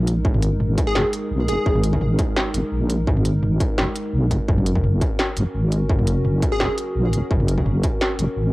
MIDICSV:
0, 0, Header, 1, 5, 480
1, 0, Start_track
1, 0, Tempo, 352941
1, 339, Time_signature, 4, 2, 24, 8
1, 11599, End_track
2, 0, Start_track
2, 0, Title_t, "Digital synth lead"
2, 0, Program_c, 0, 84
2, 1184, Note_on_c, 0, 68, 95
2, 1470, Note_off_c, 0, 68, 0
2, 2023, Note_on_c, 0, 68, 99
2, 2696, Note_off_c, 0, 68, 0
2, 8866, Note_on_c, 0, 68, 98
2, 9151, Note_off_c, 0, 68, 0
2, 11599, End_track
3, 0, Start_track
3, 0, Title_t, "Analog synth pad"
3, 0, Program_c, 1, 89
3, 0, Note_on_c, 1, 56, 82
3, 0, Note_on_c, 1, 63, 76
3, 0, Note_on_c, 1, 70, 88
3, 6044, Note_off_c, 1, 56, 0
3, 6044, Note_off_c, 1, 70, 0
3, 6045, Note_off_c, 1, 63, 0
3, 6102, Note_on_c, 1, 66, 73
3, 6102, Note_on_c, 1, 70, 90
3, 6103, Note_on_c, 1, 61, 83
3, 11599, Note_off_c, 1, 61, 0
3, 11599, Note_off_c, 1, 66, 0
3, 11599, Note_off_c, 1, 70, 0
3, 11599, End_track
4, 0, Start_track
4, 0, Title_t, "Wobble bass"
4, 0, Program_c, 2, 39
4, 0, Note_on_c, 2, 34, 104
4, 324, Note_off_c, 2, 34, 0
4, 339, Note_on_c, 2, 32, 101
4, 1044, Note_off_c, 2, 32, 0
4, 1299, Note_on_c, 2, 30, 82
4, 1416, Note_off_c, 2, 30, 0
4, 1781, Note_on_c, 2, 35, 91
4, 2020, Note_on_c, 2, 30, 80
4, 2041, Note_off_c, 2, 35, 0
4, 2136, Note_off_c, 2, 30, 0
4, 2260, Note_on_c, 2, 32, 103
4, 2965, Note_off_c, 2, 32, 0
4, 3459, Note_on_c, 2, 32, 106
4, 3576, Note_off_c, 2, 32, 0
4, 3699, Note_on_c, 2, 34, 102
4, 4164, Note_off_c, 2, 34, 0
4, 4179, Note_on_c, 2, 32, 102
4, 4884, Note_off_c, 2, 32, 0
4, 5140, Note_on_c, 2, 30, 83
4, 5256, Note_off_c, 2, 30, 0
4, 5620, Note_on_c, 2, 35, 90
4, 5861, Note_on_c, 2, 30, 80
4, 5881, Note_off_c, 2, 35, 0
4, 5977, Note_off_c, 2, 30, 0
4, 6100, Note_on_c, 2, 30, 99
4, 6805, Note_off_c, 2, 30, 0
4, 7301, Note_on_c, 2, 30, 107
4, 7417, Note_off_c, 2, 30, 0
4, 7540, Note_on_c, 2, 32, 102
4, 8005, Note_off_c, 2, 32, 0
4, 8018, Note_on_c, 2, 30, 100
4, 8724, Note_off_c, 2, 30, 0
4, 8978, Note_on_c, 2, 28, 83
4, 9095, Note_off_c, 2, 28, 0
4, 9458, Note_on_c, 2, 34, 89
4, 9698, Note_on_c, 2, 28, 79
4, 9718, Note_off_c, 2, 34, 0
4, 9815, Note_off_c, 2, 28, 0
4, 9937, Note_on_c, 2, 30, 105
4, 10644, Note_off_c, 2, 30, 0
4, 11138, Note_on_c, 2, 30, 107
4, 11255, Note_off_c, 2, 30, 0
4, 11378, Note_on_c, 2, 32, 106
4, 11599, Note_off_c, 2, 32, 0
4, 11599, End_track
5, 0, Start_track
5, 0, Title_t, "Drums"
5, 100, Note_on_c, 9, 42, 69
5, 236, Note_off_c, 9, 42, 0
5, 339, Note_on_c, 9, 36, 125
5, 467, Note_on_c, 9, 45, 56
5, 475, Note_off_c, 9, 36, 0
5, 578, Note_on_c, 9, 42, 86
5, 603, Note_off_c, 9, 45, 0
5, 714, Note_off_c, 9, 42, 0
5, 818, Note_on_c, 9, 45, 53
5, 954, Note_off_c, 9, 45, 0
5, 1058, Note_on_c, 9, 36, 114
5, 1058, Note_on_c, 9, 42, 70
5, 1194, Note_off_c, 9, 36, 0
5, 1194, Note_off_c, 9, 42, 0
5, 1296, Note_on_c, 9, 38, 126
5, 1432, Note_off_c, 9, 38, 0
5, 1538, Note_on_c, 9, 42, 87
5, 1674, Note_off_c, 9, 42, 0
5, 2018, Note_on_c, 9, 42, 73
5, 2154, Note_off_c, 9, 42, 0
5, 2259, Note_on_c, 9, 36, 127
5, 2385, Note_on_c, 9, 45, 53
5, 2395, Note_off_c, 9, 36, 0
5, 2497, Note_on_c, 9, 42, 83
5, 2521, Note_off_c, 9, 45, 0
5, 2626, Note_on_c, 9, 36, 65
5, 2633, Note_off_c, 9, 42, 0
5, 2737, Note_on_c, 9, 45, 50
5, 2762, Note_off_c, 9, 36, 0
5, 2873, Note_off_c, 9, 45, 0
5, 2977, Note_on_c, 9, 42, 68
5, 2979, Note_on_c, 9, 36, 115
5, 3113, Note_off_c, 9, 42, 0
5, 3115, Note_off_c, 9, 36, 0
5, 3218, Note_on_c, 9, 38, 127
5, 3354, Note_off_c, 9, 38, 0
5, 3459, Note_on_c, 9, 42, 84
5, 3595, Note_off_c, 9, 42, 0
5, 3939, Note_on_c, 9, 42, 72
5, 4075, Note_off_c, 9, 42, 0
5, 4179, Note_on_c, 9, 36, 127
5, 4307, Note_on_c, 9, 45, 51
5, 4315, Note_off_c, 9, 36, 0
5, 4419, Note_on_c, 9, 42, 79
5, 4443, Note_off_c, 9, 45, 0
5, 4555, Note_off_c, 9, 42, 0
5, 4660, Note_on_c, 9, 45, 49
5, 4796, Note_off_c, 9, 45, 0
5, 4899, Note_on_c, 9, 36, 111
5, 4900, Note_on_c, 9, 42, 68
5, 5035, Note_off_c, 9, 36, 0
5, 5036, Note_off_c, 9, 42, 0
5, 5140, Note_on_c, 9, 38, 127
5, 5276, Note_off_c, 9, 38, 0
5, 5379, Note_on_c, 9, 42, 78
5, 5515, Note_off_c, 9, 42, 0
5, 5859, Note_on_c, 9, 36, 63
5, 5861, Note_on_c, 9, 42, 65
5, 5995, Note_off_c, 9, 36, 0
5, 5997, Note_off_c, 9, 42, 0
5, 6099, Note_on_c, 9, 36, 127
5, 6228, Note_on_c, 9, 45, 52
5, 6235, Note_off_c, 9, 36, 0
5, 6341, Note_on_c, 9, 42, 77
5, 6364, Note_off_c, 9, 45, 0
5, 6466, Note_on_c, 9, 36, 61
5, 6477, Note_off_c, 9, 42, 0
5, 6579, Note_on_c, 9, 45, 49
5, 6602, Note_off_c, 9, 36, 0
5, 6715, Note_off_c, 9, 45, 0
5, 6818, Note_on_c, 9, 36, 110
5, 6820, Note_on_c, 9, 42, 65
5, 6954, Note_off_c, 9, 36, 0
5, 6956, Note_off_c, 9, 42, 0
5, 7058, Note_on_c, 9, 38, 124
5, 7194, Note_off_c, 9, 38, 0
5, 7298, Note_on_c, 9, 42, 77
5, 7434, Note_off_c, 9, 42, 0
5, 7779, Note_on_c, 9, 42, 65
5, 7915, Note_off_c, 9, 42, 0
5, 8018, Note_on_c, 9, 36, 123
5, 8145, Note_on_c, 9, 45, 55
5, 8154, Note_off_c, 9, 36, 0
5, 8257, Note_on_c, 9, 42, 76
5, 8281, Note_off_c, 9, 45, 0
5, 8393, Note_off_c, 9, 42, 0
5, 8496, Note_on_c, 9, 45, 50
5, 8632, Note_off_c, 9, 45, 0
5, 8737, Note_on_c, 9, 36, 105
5, 8737, Note_on_c, 9, 42, 63
5, 8873, Note_off_c, 9, 36, 0
5, 8873, Note_off_c, 9, 42, 0
5, 8977, Note_on_c, 9, 38, 125
5, 9113, Note_off_c, 9, 38, 0
5, 9217, Note_on_c, 9, 42, 77
5, 9353, Note_off_c, 9, 42, 0
5, 9697, Note_on_c, 9, 42, 64
5, 9833, Note_off_c, 9, 42, 0
5, 9937, Note_on_c, 9, 36, 120
5, 10064, Note_on_c, 9, 45, 55
5, 10073, Note_off_c, 9, 36, 0
5, 10177, Note_on_c, 9, 42, 80
5, 10200, Note_off_c, 9, 45, 0
5, 10304, Note_on_c, 9, 36, 57
5, 10313, Note_off_c, 9, 42, 0
5, 10416, Note_on_c, 9, 45, 52
5, 10440, Note_off_c, 9, 36, 0
5, 10552, Note_off_c, 9, 45, 0
5, 10656, Note_on_c, 9, 42, 64
5, 10658, Note_on_c, 9, 36, 103
5, 10792, Note_off_c, 9, 42, 0
5, 10794, Note_off_c, 9, 36, 0
5, 10897, Note_on_c, 9, 38, 117
5, 11033, Note_off_c, 9, 38, 0
5, 11138, Note_on_c, 9, 42, 80
5, 11274, Note_off_c, 9, 42, 0
5, 11599, End_track
0, 0, End_of_file